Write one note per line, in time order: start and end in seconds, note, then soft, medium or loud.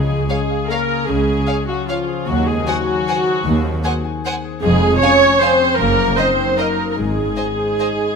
0.00 0.23 C#2 medium
0.00 0.22 C#3 medium
0.00 0.46 C#3 medium
0.00 1.07 C#3 soft
0.00 0.27 G#3 medium
0.00 0.28 G#4 soft
0.00 0.29 G#4 medium
0.00 0.69 C#5 soft
0.00 0.48 F5 soft
0.09 1.26 C#4 soft
0.28 0.68 G#3 medium
0.28 0.89 G#4 soft
0.28 0.70 G#4 medium
0.28 0.38 C#5 soft
0.28 0.37 F5 soft
0.50 1.67 F5 soft
0.69 1.08 A#3 medium
0.69 1.08 A#4 medium
0.69 1.87 C#5 soft
0.69 0.79 C#5 soft
0.69 0.79 F5 soft
0.90 1.46 G#4 soft
1.08 1.40 C#2 medium
1.08 1.40 C#3 medium
1.08 2.28 C#3 medium
1.08 1.67 G#3 medium
1.08 1.68 G#4 medium
1.27 2.28 C#4 soft
1.47 2.06 G#4 medium
1.47 1.57 C#5 soft
1.47 1.55 F5 soft
1.68 1.89 F#3 medium
1.68 1.88 F#4 medium
1.68 2.29 F5 soft
1.88 2.28 F3 medium
1.88 2.26 F4 medium
1.88 2.28 C#5 soft
1.88 1.98 C#5 soft
1.88 1.98 F5 soft
2.08 2.65 G#4 soft
2.27 2.59 D#2 medium
2.27 3.44 D#3 medium
2.27 2.47 F#3 medium
2.27 2.46 F#4 medium
2.46 2.67 G#3 medium
2.46 3.63 C4 soft
2.46 2.67 G#4 medium
2.66 4.05 F#3 medium
2.66 4.05 F#4 medium
2.66 3.25 G#4 medium
2.66 2.76 C5 medium
2.66 2.76 F#5 soft
2.66 2.75 G#5 medium
2.86 4.03 G#5 medium
3.07 4.23 C5 medium
3.07 3.17 C5 medium
3.07 3.16 F#5 medium
3.07 3.16 G#5 medium
3.26 3.83 G#4 soft
3.45 3.78 D#2 medium
3.45 4.64 D#3 medium
3.64 4.64 C4 soft
3.84 4.43 G#4 medium
3.84 3.93 C5 medium
3.84 3.93 F#5 medium
3.84 3.92 G#5 medium
4.05 5.80 G#5 medium
4.24 4.64 C5 medium
4.24 4.33 C5 medium
4.24 4.33 F#5 medium
4.24 4.34 G#5 medium
4.44 5.00 G#4 medium
4.62 4.94 F1 medium
4.62 5.80 F2 medium
4.62 4.94 F2 medium
4.62 4.98 G#3 medium
4.62 4.98 G#4 loud
4.81 5.80 G#3 medium
5.01 5.41 C#4 medium
5.01 5.41 G#4 medium
5.01 5.41 C#5 loud
5.01 5.10 C#5 medium
5.01 5.10 F5 medium
5.01 5.11 G#5 medium
5.22 5.80 C#5 medium
5.42 5.79 C4 medium
5.42 5.80 G#4 medium
5.42 5.79 C5 loud
5.42 5.51 C#5 medium
5.42 5.50 F5 medium
5.42 5.50 G#5 medium
5.61 5.80 C#4 medium
5.79 6.11 F#1 medium
5.79 6.10 F#2 medium
5.79 6.99 F#2 medium
5.79 6.17 A#3 medium
5.79 6.18 A#4 loud
5.98 6.99 F#3 medium
6.17 6.58 C4 medium
6.17 6.77 D#4 medium
6.17 6.59 C5 medium
6.17 6.25 D#5 medium
6.17 6.26 D#5 medium
6.39 6.99 A#4 medium
6.57 6.96 A#3 medium
6.57 6.99 F#4 soft
6.57 6.90 A#4 medium
6.57 6.67 D#5 medium
6.57 6.67 D#5 soft
6.78 7.36 D#4 soft
6.91 6.98 A#4 medium
6.97 7.30 G#1 medium
6.97 7.30 G#2 medium
6.97 8.16 G#2 medium
6.97 8.16 G#3 medium
6.97 8.16 G#4 medium
7.17 8.16 G#3 soft
7.37 7.98 D#4 soft
7.37 7.45 C5 soft
7.37 7.45 D#5 soft
7.37 7.45 G#5 soft
7.59 8.16 C5 soft
7.79 8.16 G#4 soft
7.79 7.87 C5 soft
7.79 7.87 D#5 soft
7.79 7.87 G#5 soft
7.99 8.16 D#4 soft